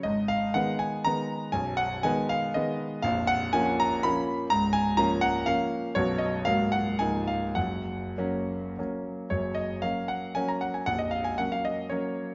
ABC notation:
X:1
M:3/4
L:1/16
Q:1/4=119
K:F#
V:1 name="Grand piano"
d2 e2 f2 g2 a4 | g2 f2 g2 e2 d4 | e2 f2 g2 a2 b4 | a2 g2 a2 f2 e4 |
c2 d2 e2 f2 g2 e2 | f8 z4 | c2 d2 e2 f2 g a f g | f d e g f e d2 c4 |]
V:2 name="Grand piano" clef=bass
[G,,,G,,]4 [D,G,B,]4 [D,G,B,]4 | [B,,,,B,,,]4 [D,G,B,]4 [D,G,B,]4 | [A,,,,A,,,]4 [E,A,C]4 [E,A,C]4 | [C,,,C,,]4 [E,A,C]4 [E,A,C]4 |
[B,,,,B,,,F,B,F]4 [C,,,C,,F,A,F]4 [C,,,C,,E,A,D]4 | [F,,,F,,]4 [F,A,C]4 [F,A,C]4 | [F,,,F,,]4 [F,A,C]4 [F,A,C]4 | [A,,,,A,,,]4 [F,A,C]4 [F,A,C]4 |]